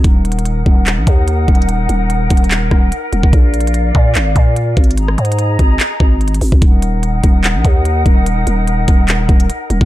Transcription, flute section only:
\new Staff \with { instrumentName = "Flute section" } { \time 4/4 \key ees \minor \tempo 4 = 146 <ees' bes' ges''>1~ | <ees' bes' ges''>1 | <d'' f''>1 | <aes' ees'' bes''>1 |
<ees' bes' ges''>1~ | <ees' bes' ges''>1 | }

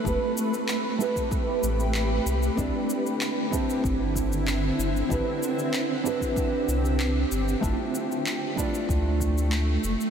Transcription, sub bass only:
\new Staff \with { instrumentName = "Sub bass" } { \clef bass \time 4/4 \key g \mixolydian \tempo 4 = 95 f,,8 r2 a,,4 c,8 | c,8 r4. g,,4 g,,8 g,,8 | a,,8 r2 c,4 g,,8 | g,,8 r4. d,4. f,,8 | }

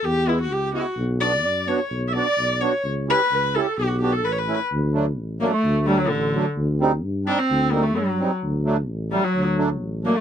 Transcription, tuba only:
\new Staff \with { instrumentName = "Tuba" } { \clef bass \time 2/4 \tempo 4 = 129 e,4 cis,4 | b,,4 fis,4 | b,,4 b,,4 | cis,4 cis,4 |
b,,4 a,,4 | d,4 a,,4 | d,4 a,,4 | d,4 g,4 |
d,4 g,4 | d,4 a,,4 | d,4 a,,4 | }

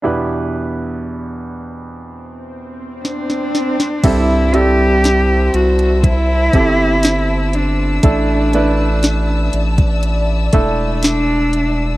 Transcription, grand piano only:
<<
  \new Staff \with { instrumentName = "Grand piano" } { \time 4/4 \key e \minor \tempo 4 = 60 <d' e' g' b'>1 | <c' e' g' a'>8 <g c' e' a'>2 <c' e' g' a'>4. | <a d' e' a'>8 <a d' e' b'>2 <a d' e' a'>4. | }
  \new Staff \with { instrumentName = "Grand piano" } { \clef bass \time 4/4 \key e \minor <e, b,>1 | g,4. r2 r8 | r1 | }
>>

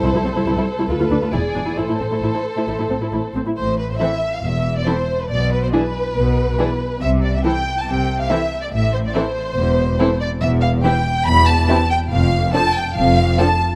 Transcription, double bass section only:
\new Staff \with { instrumentName = "Double bass section" } { \clef bass \time 4/4 \key a \minor \tempo 4 = 140 c,16 r16 c,16 r16 c,16 r8. d,16 r16 d,16 r16 e,,16 r16 e,,16 r16 | a,,16 r16 a,,16 r16 a,,16 r8. a,,16 r16 a,,16 r16 a,,16 r16 a,,16 r16 | a,,4 r4 e,,4 r4 | b,,4 r4 b,,4 r4 |
c,4 r4 c,4 r4 | a,,4 r4 e,,4 r4 | \key c \major e,,4 r4 e,,4 r4 | f,,4 r4 f,,4 r4 | }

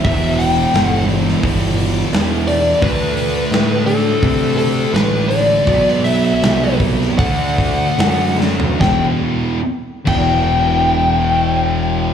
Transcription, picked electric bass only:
\new Staff \with { instrumentName = "Picked electric bass" } { \clef bass \time 4/4 \key e \minor \tempo 4 = 81 e,,4 g,,4 g,,4 e,4 | d,4 a,4 c4 a,,4 | b,,4 c,4 d,4 fis,4 | e,,8 r4 e,,2~ e,,8 | }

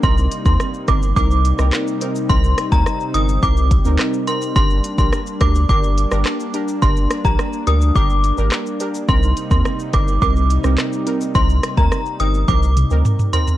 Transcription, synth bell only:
\new Staff \with { instrumentName = "Synth bell" } { \time 4/4 \key c \minor \tempo 4 = 106 c'''16 r8 c'''16 r8 d'''16 r16 d'''8. r4 r16 | c'''16 r8 bes''16 r8 ees'''16 r16 d'''8. r8. c'''16 r16 | c'''16 r8 c'''16 r8 d'''16 r16 d'''8. r4 r16 | c'''16 r8 bes''16 r8 ees'''16 r16 d'''8. r4 r16 |
c'''16 r8 c'''16 r8 d'''16 r16 d'''8. r4 r16 | c'''16 r8 bes''16 r8 ees'''16 r16 d'''8. r8. c'''16 r16 | }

